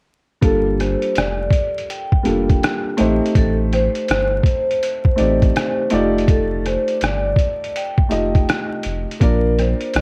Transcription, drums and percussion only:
0.42 kick, closed hi-hat
0.80 cross-stick, closed hi-hat
1.02 closed hi-hat
1.15 cross-stick, closed hi-hat
1.50 kick, closed hi-hat
1.78 closed hi-hat
1.90 closed hi-hat
2.12 kick
2.25 closed hi-hat
2.49 kick, closed hi-hat
2.63 cross-stick, closed hi-hat
2.98 closed hi-hat
3.26 closed hi-hat
3.35 kick, closed hi-hat
3.73 cross-stick, closed hi-hat
3.95 closed hi-hat
4.08 cross-stick, closed hi-hat
4.43 kick, closed hi-hat
4.71 closed hi-hat
4.83 closed hi-hat
5.05 kick
5.18 closed hi-hat
5.42 kick, closed hi-hat
5.56 cross-stick, closed hi-hat
5.90 closed hi-hat
6.18 closed hi-hat
6.28 kick, closed hi-hat
6.66 cross-stick, closed hi-hat
6.88 closed hi-hat
7.01 cross-stick, closed hi-hat
7.36 kick, closed hi-hat
7.64 closed hi-hat
7.76 closed hi-hat
7.98 kick
8.11 closed hi-hat
8.35 kick, closed hi-hat
8.49 cross-stick, closed hi-hat
8.83 closed hi-hat
9.11 closed hi-hat
9.21 kick, closed hi-hat
9.58 cross-stick, closed hi-hat
9.81 closed hi-hat
9.94 cross-stick, closed hi-hat

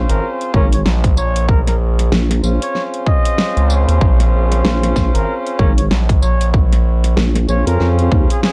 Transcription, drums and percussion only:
0.09 closed hi-hat
0.41 closed hi-hat
0.54 kick
0.73 closed hi-hat
0.86 snare
1.04 kick, closed hi-hat
1.17 tambourine
1.36 closed hi-hat
1.49 kick
1.67 snare, closed hi-hat
1.99 snare, closed hi-hat
2.12 snare
2.31 snare, closed hi-hat
2.44 tambourine
2.62 closed hi-hat
2.75 snare
2.94 closed hi-hat
3.06 kick
3.25 closed hi-hat
3.38 snare
3.57 closed hi-hat
3.70 tambourine
3.89 closed hi-hat
4.01 kick
4.20 snare, closed hi-hat
4.52 snare, closed hi-hat
4.65 snare
4.83 snare, closed hi-hat
4.96 kick, snare, tambourine
5.15 closed hi-hat
5.47 closed hi-hat
5.59 kick
5.78 closed hi-hat
5.91 snare
6.09 kick, closed hi-hat
6.22 tambourine
6.41 closed hi-hat
6.54 kick
6.73 snare, closed hi-hat
7.04 snare, closed hi-hat
7.17 snare
7.35 snare, closed hi-hat
7.49 tambourine
7.67 closed hi-hat
7.80 snare
7.99 closed hi-hat
8.12 kick
8.30 closed hi-hat
8.43 snare

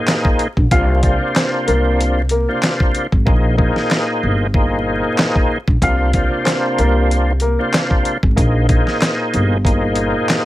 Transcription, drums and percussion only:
0.08 snare, clap, closed hi-hat
0.25 kick
0.39 closed hi-hat
0.57 kick
0.71 kick, closed hi-hat
1.03 kick, closed hi-hat
1.36 snare, clap, closed hi-hat
1.68 closed hi-hat
2.01 closed hi-hat
2.29 closed hi-hat
2.63 snare, clap, closed hi-hat
2.80 kick
2.95 closed hi-hat
3.12 kick
3.27 kick
3.58 kick
3.76 snare
3.91 snare, clap
4.54 kick
5.18 snare, clap
5.36 kick
5.68 kick
5.82 kick, closed hi-hat
6.13 kick, closed hi-hat
6.46 snare, clap, closed hi-hat
6.78 closed hi-hat
7.11 closed hi-hat
7.40 closed hi-hat
7.74 snare, clap, closed hi-hat
7.91 kick
8.05 closed hi-hat
8.23 kick
8.37 kick, closed hi-hat
8.69 kick, closed hi-hat
8.87 snare
9.01 snare, clap, closed hi-hat
9.34 closed hi-hat
9.65 kick, closed hi-hat
9.95 closed hi-hat
10.29 snare, clap, closed hi-hat

